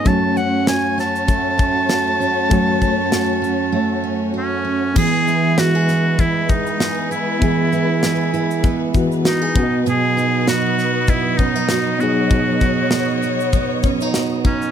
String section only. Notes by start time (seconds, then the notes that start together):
Already playing: C#4
0.06 A3 F#4 C#5
4.96 E3 G#3 B3 B4
9.56 F#3 B4 D#5
12.01 C#5